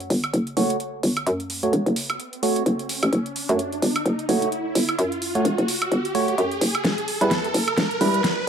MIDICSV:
0, 0, Header, 1, 5, 480
1, 0, Start_track
1, 0, Tempo, 465116
1, 1305, Time_signature, 4, 2, 24, 8
1, 8760, End_track
2, 0, Start_track
2, 0, Title_t, "Synth stab"
2, 0, Program_c, 0, 62
2, 586, Note_on_c, 0, 57, 84
2, 586, Note_on_c, 0, 66, 73
2, 586, Note_on_c, 0, 73, 89
2, 796, Note_off_c, 0, 57, 0
2, 796, Note_off_c, 0, 66, 0
2, 796, Note_off_c, 0, 73, 0
2, 1683, Note_on_c, 0, 57, 78
2, 1683, Note_on_c, 0, 66, 70
2, 1683, Note_on_c, 0, 73, 85
2, 1795, Note_off_c, 0, 57, 0
2, 1795, Note_off_c, 0, 66, 0
2, 1795, Note_off_c, 0, 73, 0
2, 2505, Note_on_c, 0, 57, 88
2, 2505, Note_on_c, 0, 66, 80
2, 2505, Note_on_c, 0, 73, 93
2, 2716, Note_off_c, 0, 57, 0
2, 2716, Note_off_c, 0, 66, 0
2, 2716, Note_off_c, 0, 73, 0
2, 3604, Note_on_c, 0, 57, 78
2, 3604, Note_on_c, 0, 73, 85
2, 3605, Note_on_c, 0, 66, 73
2, 3715, Note_off_c, 0, 57, 0
2, 3715, Note_off_c, 0, 73, 0
2, 3716, Note_off_c, 0, 66, 0
2, 4425, Note_on_c, 0, 57, 85
2, 4425, Note_on_c, 0, 66, 77
2, 4425, Note_on_c, 0, 73, 91
2, 4635, Note_off_c, 0, 57, 0
2, 4635, Note_off_c, 0, 66, 0
2, 4635, Note_off_c, 0, 73, 0
2, 5523, Note_on_c, 0, 57, 84
2, 5523, Note_on_c, 0, 66, 72
2, 5524, Note_on_c, 0, 73, 85
2, 5635, Note_off_c, 0, 57, 0
2, 5635, Note_off_c, 0, 66, 0
2, 5635, Note_off_c, 0, 73, 0
2, 6346, Note_on_c, 0, 57, 86
2, 6346, Note_on_c, 0, 66, 78
2, 6346, Note_on_c, 0, 73, 95
2, 6556, Note_off_c, 0, 57, 0
2, 6556, Note_off_c, 0, 66, 0
2, 6556, Note_off_c, 0, 73, 0
2, 7443, Note_on_c, 0, 71, 90
2, 7444, Note_on_c, 0, 55, 81
2, 7444, Note_on_c, 0, 64, 77
2, 7555, Note_off_c, 0, 55, 0
2, 7555, Note_off_c, 0, 64, 0
2, 7555, Note_off_c, 0, 71, 0
2, 8265, Note_on_c, 0, 55, 90
2, 8265, Note_on_c, 0, 64, 77
2, 8265, Note_on_c, 0, 71, 96
2, 8475, Note_off_c, 0, 55, 0
2, 8475, Note_off_c, 0, 64, 0
2, 8476, Note_off_c, 0, 71, 0
2, 8760, End_track
3, 0, Start_track
3, 0, Title_t, "FM bass"
3, 0, Program_c, 1, 39
3, 105, Note_on_c, 1, 31, 99
3, 329, Note_off_c, 1, 31, 0
3, 346, Note_on_c, 1, 30, 98
3, 569, Note_off_c, 1, 30, 0
3, 586, Note_on_c, 1, 30, 93
3, 1050, Note_off_c, 1, 30, 0
3, 1066, Note_on_c, 1, 31, 92
3, 1290, Note_off_c, 1, 31, 0
3, 1306, Note_on_c, 1, 42, 97
3, 1769, Note_off_c, 1, 42, 0
3, 1785, Note_on_c, 1, 28, 94
3, 1901, Note_off_c, 1, 28, 0
3, 1923, Note_on_c, 1, 30, 95
3, 2249, Note_off_c, 1, 30, 0
3, 2746, Note_on_c, 1, 30, 91
3, 3102, Note_off_c, 1, 30, 0
3, 3124, Note_on_c, 1, 33, 89
3, 3210, Note_off_c, 1, 33, 0
3, 3226, Note_on_c, 1, 30, 96
3, 3582, Note_off_c, 1, 30, 0
3, 3604, Note_on_c, 1, 42, 95
3, 3930, Note_off_c, 1, 42, 0
3, 3946, Note_on_c, 1, 31, 96
3, 4170, Note_off_c, 1, 31, 0
3, 4185, Note_on_c, 1, 30, 99
3, 4409, Note_off_c, 1, 30, 0
3, 4425, Note_on_c, 1, 30, 94
3, 4889, Note_off_c, 1, 30, 0
3, 4905, Note_on_c, 1, 31, 95
3, 5129, Note_off_c, 1, 31, 0
3, 5145, Note_on_c, 1, 42, 96
3, 5609, Note_off_c, 1, 42, 0
3, 5625, Note_on_c, 1, 28, 93
3, 5741, Note_off_c, 1, 28, 0
3, 5762, Note_on_c, 1, 30, 96
3, 6089, Note_off_c, 1, 30, 0
3, 6106, Note_on_c, 1, 31, 97
3, 6569, Note_off_c, 1, 31, 0
3, 6585, Note_on_c, 1, 42, 97
3, 6809, Note_off_c, 1, 42, 0
3, 6825, Note_on_c, 1, 30, 99
3, 7049, Note_off_c, 1, 30, 0
3, 7064, Note_on_c, 1, 28, 95
3, 7421, Note_off_c, 1, 28, 0
3, 7442, Note_on_c, 1, 40, 102
3, 7769, Note_off_c, 1, 40, 0
3, 7785, Note_on_c, 1, 30, 101
3, 8009, Note_off_c, 1, 30, 0
3, 8025, Note_on_c, 1, 28, 97
3, 8249, Note_off_c, 1, 28, 0
3, 8265, Note_on_c, 1, 28, 96
3, 8729, Note_off_c, 1, 28, 0
3, 8760, End_track
4, 0, Start_track
4, 0, Title_t, "Riser"
4, 0, Program_c, 2, 103
4, 0, Note_on_c, 2, 60, 75
4, 8760, Note_off_c, 2, 60, 0
4, 8760, End_track
5, 0, Start_track
5, 0, Title_t, "Drums"
5, 4, Note_on_c, 9, 42, 35
5, 106, Note_on_c, 9, 46, 101
5, 107, Note_off_c, 9, 42, 0
5, 209, Note_off_c, 9, 46, 0
5, 244, Note_on_c, 9, 42, 52
5, 244, Note_on_c, 9, 76, 74
5, 347, Note_off_c, 9, 42, 0
5, 347, Note_off_c, 9, 76, 0
5, 347, Note_on_c, 9, 42, 65
5, 450, Note_off_c, 9, 42, 0
5, 484, Note_on_c, 9, 42, 38
5, 586, Note_on_c, 9, 46, 97
5, 587, Note_off_c, 9, 42, 0
5, 689, Note_off_c, 9, 46, 0
5, 724, Note_on_c, 9, 42, 54
5, 826, Note_off_c, 9, 42, 0
5, 826, Note_on_c, 9, 42, 63
5, 929, Note_off_c, 9, 42, 0
5, 1066, Note_on_c, 9, 46, 99
5, 1170, Note_off_c, 9, 46, 0
5, 1204, Note_on_c, 9, 42, 52
5, 1204, Note_on_c, 9, 76, 73
5, 1306, Note_off_c, 9, 42, 0
5, 1306, Note_on_c, 9, 42, 68
5, 1307, Note_off_c, 9, 76, 0
5, 1409, Note_off_c, 9, 42, 0
5, 1444, Note_on_c, 9, 42, 36
5, 1546, Note_on_c, 9, 46, 103
5, 1547, Note_off_c, 9, 42, 0
5, 1649, Note_off_c, 9, 46, 0
5, 1684, Note_on_c, 9, 42, 51
5, 1786, Note_off_c, 9, 42, 0
5, 1786, Note_on_c, 9, 42, 65
5, 1889, Note_off_c, 9, 42, 0
5, 1924, Note_on_c, 9, 42, 34
5, 2026, Note_on_c, 9, 46, 103
5, 2027, Note_off_c, 9, 42, 0
5, 2129, Note_off_c, 9, 46, 0
5, 2164, Note_on_c, 9, 42, 51
5, 2164, Note_on_c, 9, 76, 76
5, 2266, Note_off_c, 9, 42, 0
5, 2266, Note_on_c, 9, 42, 63
5, 2267, Note_off_c, 9, 76, 0
5, 2369, Note_off_c, 9, 42, 0
5, 2404, Note_on_c, 9, 42, 36
5, 2506, Note_on_c, 9, 46, 103
5, 2507, Note_off_c, 9, 42, 0
5, 2609, Note_off_c, 9, 46, 0
5, 2644, Note_on_c, 9, 42, 51
5, 2747, Note_off_c, 9, 42, 0
5, 2747, Note_on_c, 9, 42, 62
5, 2850, Note_off_c, 9, 42, 0
5, 2884, Note_on_c, 9, 42, 35
5, 2986, Note_on_c, 9, 46, 100
5, 2987, Note_off_c, 9, 42, 0
5, 3089, Note_off_c, 9, 46, 0
5, 3124, Note_on_c, 9, 42, 52
5, 3124, Note_on_c, 9, 76, 76
5, 3226, Note_off_c, 9, 42, 0
5, 3226, Note_on_c, 9, 42, 64
5, 3227, Note_off_c, 9, 76, 0
5, 3330, Note_off_c, 9, 42, 0
5, 3364, Note_on_c, 9, 42, 34
5, 3466, Note_on_c, 9, 46, 101
5, 3467, Note_off_c, 9, 42, 0
5, 3569, Note_off_c, 9, 46, 0
5, 3604, Note_on_c, 9, 42, 49
5, 3706, Note_off_c, 9, 42, 0
5, 3706, Note_on_c, 9, 42, 65
5, 3809, Note_off_c, 9, 42, 0
5, 3844, Note_on_c, 9, 42, 32
5, 3946, Note_on_c, 9, 46, 106
5, 3948, Note_off_c, 9, 42, 0
5, 4050, Note_off_c, 9, 46, 0
5, 4084, Note_on_c, 9, 42, 49
5, 4084, Note_on_c, 9, 76, 78
5, 4186, Note_off_c, 9, 42, 0
5, 4186, Note_on_c, 9, 42, 59
5, 4187, Note_off_c, 9, 76, 0
5, 4289, Note_off_c, 9, 42, 0
5, 4324, Note_on_c, 9, 42, 36
5, 4426, Note_on_c, 9, 46, 103
5, 4427, Note_off_c, 9, 42, 0
5, 4529, Note_off_c, 9, 46, 0
5, 4563, Note_on_c, 9, 42, 51
5, 4666, Note_off_c, 9, 42, 0
5, 4666, Note_on_c, 9, 42, 60
5, 4769, Note_off_c, 9, 42, 0
5, 4906, Note_on_c, 9, 46, 104
5, 5009, Note_off_c, 9, 46, 0
5, 5043, Note_on_c, 9, 42, 50
5, 5043, Note_on_c, 9, 76, 74
5, 5146, Note_off_c, 9, 42, 0
5, 5146, Note_off_c, 9, 76, 0
5, 5146, Note_on_c, 9, 42, 61
5, 5249, Note_off_c, 9, 42, 0
5, 5284, Note_on_c, 9, 42, 35
5, 5385, Note_on_c, 9, 46, 105
5, 5387, Note_off_c, 9, 42, 0
5, 5489, Note_off_c, 9, 46, 0
5, 5523, Note_on_c, 9, 42, 48
5, 5625, Note_off_c, 9, 42, 0
5, 5625, Note_on_c, 9, 42, 62
5, 5729, Note_off_c, 9, 42, 0
5, 5763, Note_on_c, 9, 42, 33
5, 5865, Note_on_c, 9, 46, 106
5, 5866, Note_off_c, 9, 42, 0
5, 5969, Note_off_c, 9, 46, 0
5, 6003, Note_on_c, 9, 42, 47
5, 6003, Note_on_c, 9, 76, 83
5, 6106, Note_off_c, 9, 42, 0
5, 6106, Note_on_c, 9, 42, 59
5, 6107, Note_off_c, 9, 76, 0
5, 6209, Note_off_c, 9, 42, 0
5, 6244, Note_on_c, 9, 42, 35
5, 6345, Note_on_c, 9, 46, 98
5, 6347, Note_off_c, 9, 42, 0
5, 6448, Note_off_c, 9, 46, 0
5, 6483, Note_on_c, 9, 42, 50
5, 6586, Note_off_c, 9, 42, 0
5, 6586, Note_on_c, 9, 42, 60
5, 6689, Note_off_c, 9, 42, 0
5, 6723, Note_on_c, 9, 42, 34
5, 6826, Note_on_c, 9, 46, 104
5, 6827, Note_off_c, 9, 42, 0
5, 6929, Note_off_c, 9, 46, 0
5, 6964, Note_on_c, 9, 42, 51
5, 6964, Note_on_c, 9, 76, 80
5, 7066, Note_off_c, 9, 42, 0
5, 7066, Note_on_c, 9, 38, 50
5, 7066, Note_on_c, 9, 42, 62
5, 7067, Note_off_c, 9, 76, 0
5, 7169, Note_off_c, 9, 38, 0
5, 7169, Note_off_c, 9, 42, 0
5, 7204, Note_on_c, 9, 42, 37
5, 7305, Note_on_c, 9, 46, 100
5, 7307, Note_off_c, 9, 42, 0
5, 7408, Note_off_c, 9, 46, 0
5, 7443, Note_on_c, 9, 42, 48
5, 7545, Note_off_c, 9, 42, 0
5, 7545, Note_on_c, 9, 38, 54
5, 7545, Note_on_c, 9, 42, 64
5, 7648, Note_off_c, 9, 38, 0
5, 7648, Note_off_c, 9, 42, 0
5, 7683, Note_on_c, 9, 42, 33
5, 7785, Note_on_c, 9, 46, 99
5, 7786, Note_off_c, 9, 42, 0
5, 7888, Note_off_c, 9, 46, 0
5, 7922, Note_on_c, 9, 42, 48
5, 7922, Note_on_c, 9, 76, 82
5, 8025, Note_off_c, 9, 42, 0
5, 8025, Note_on_c, 9, 38, 49
5, 8025, Note_on_c, 9, 42, 60
5, 8026, Note_off_c, 9, 76, 0
5, 8128, Note_off_c, 9, 38, 0
5, 8128, Note_off_c, 9, 42, 0
5, 8163, Note_on_c, 9, 42, 34
5, 8265, Note_on_c, 9, 46, 96
5, 8266, Note_off_c, 9, 42, 0
5, 8368, Note_off_c, 9, 46, 0
5, 8403, Note_on_c, 9, 42, 50
5, 8506, Note_off_c, 9, 42, 0
5, 8506, Note_on_c, 9, 38, 55
5, 8506, Note_on_c, 9, 42, 61
5, 8609, Note_off_c, 9, 38, 0
5, 8609, Note_off_c, 9, 42, 0
5, 8760, End_track
0, 0, End_of_file